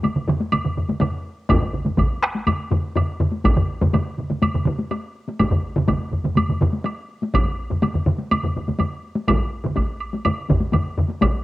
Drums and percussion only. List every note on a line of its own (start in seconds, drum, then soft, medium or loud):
0.03 taiko low-mid medium
0.03 taiko mid medium
0.03 taiko high medium
0.03 high woodblock soft
0.16 taiko low-mid medium
0.16 taiko mid medium
0.28 taiko low-mid medium
0.28 taiko mid loud
0.40 taiko high medium
0.52 taiko low-mid medium
0.52 taiko mid medium
0.52 taiko high medium
0.52 high woodblock medium
0.65 taiko low-mid medium
0.65 taiko mid medium
0.77 taiko low-mid medium
0.77 taiko mid medium
0.89 taiko low-mid medium
0.89 taiko mid medium
0.89 taiko high medium
1.01 taiko low-mid loud
1.01 taiko mid medium
1.01 taiko high medium
1.01 high woodblock soft
1.49 taiko medium
1.49 taiko low-mid medium
1.49 taiko mid medium
1.49 taiko high medium
1.49 high woodblock medium
1.62 taiko low-mid medium
1.62 taiko mid medium
1.74 taiko low-mid medium
1.74 taiko mid medium
1.85 taiko low-mid medium
1.85 taiko mid medium
1.85 taiko high medium
1.98 taiko medium
1.98 taiko low-mid medium
1.98 taiko mid medium
1.98 taiko high medium
1.98 high woodblock soft
2.22 taiko rim medium
2.22 high woodblock soft
2.35 taiko high soft
2.47 taiko low-mid medium
2.47 taiko mid medium
2.47 taiko high medium
2.47 high woodblock medium
2.70 taiko low-mid medium
2.70 taiko mid medium
2.70 taiko high soft
2.95 taiko low-mid medium
2.95 taiko mid medium
2.95 taiko high medium
2.95 high woodblock soft
3.20 taiko low-mid medium
3.20 taiko mid medium
3.32 taiko high soft
3.44 taiko medium
3.44 taiko high medium
3.44 high woodblock medium
3.57 taiko low-mid medium
3.57 taiko mid loud
3.81 taiko low-mid medium
3.81 taiko mid medium
3.81 taiko high soft
3.93 taiko low-mid medium
3.93 taiko mid loud
3.93 taiko high medium
3.93 high woodblock soft
4.18 taiko low-mid medium
4.18 taiko mid medium
4.30 taiko low-mid medium
4.30 taiko mid medium
4.30 taiko high soft
4.42 taiko low-mid medium
4.42 taiko mid medium
4.42 taiko high medium
4.42 high woodblock medium
4.54 taiko low-mid medium
4.54 taiko mid medium
4.65 taiko low-mid medium
4.65 taiko mid medium
4.79 taiko high soft
4.91 taiko high medium
4.91 high woodblock soft
5.28 taiko high medium
5.39 taiko medium
5.39 taiko high medium
5.39 high woodblock soft
5.51 taiko low-mid medium
5.51 taiko mid medium
5.76 taiko low-mid medium
5.76 taiko mid medium
5.88 taiko medium
5.88 taiko low-mid medium
5.88 taiko mid medium
5.88 taiko high medium
5.88 high woodblock soft
6.12 taiko low-mid medium
6.12 taiko mid medium
6.24 taiko low-mid medium
6.24 taiko mid medium
6.24 taiko high soft
6.36 taiko low-mid medium
6.36 taiko mid medium
6.36 taiko high medium
6.36 high woodblock medium
6.49 taiko low-mid medium
6.49 taiko mid medium
6.61 taiko low-mid medium
6.61 taiko mid medium
6.73 taiko high soft
6.85 taiko high medium
6.85 high woodblock soft
7.22 taiko high medium
7.34 taiko medium
7.34 taiko low-mid medium
7.34 taiko mid medium
7.34 taiko high medium
7.34 high woodblock medium
7.70 taiko low-mid medium
7.70 taiko mid medium
7.70 taiko high medium
7.83 taiko low-mid medium
7.83 taiko mid medium
7.83 taiko high medium
7.83 high woodblock soft
7.95 taiko low-mid medium
7.95 taiko mid medium
8.06 taiko low-mid medium
8.06 taiko mid medium
8.18 taiko high medium
8.31 taiko low-mid medium
8.31 taiko mid medium
8.31 taiko high medium
8.31 high woodblock medium
8.43 taiko low-mid medium
8.43 taiko mid medium
8.56 taiko low-mid medium
8.56 taiko mid medium
8.68 taiko low-mid medium
8.68 taiko mid medium
8.68 taiko high soft
8.79 taiko low-mid medium
8.79 taiko mid medium
8.79 taiko high medium
8.79 high woodblock soft
9.15 taiko high medium
9.28 taiko medium
9.28 taiko low-mid medium
9.28 taiko mid loud
9.28 taiko high medium
9.28 high woodblock medium
9.64 taiko low-mid medium
9.64 taiko mid medium
9.64 taiko high medium
9.76 taiko medium
9.76 taiko high medium
9.76 high woodblock soft
10.00 high woodblock soft
10.13 taiko high medium
10.25 taiko low-mid medium
10.25 taiko mid medium
10.25 taiko high medium
10.25 high woodblock medium
10.49 taiko medium
10.49 taiko low-mid loud
10.49 taiko mid medium
10.49 taiko high soft
10.61 taiko high soft
10.72 taiko low-mid medium
10.72 taiko mid medium
10.72 taiko high medium
10.72 high woodblock soft
10.98 taiko low-mid medium
10.98 taiko mid medium
11.08 taiko high soft
11.21 taiko medium
11.21 taiko high medium
11.21 high woodblock medium
11.34 taiko high soft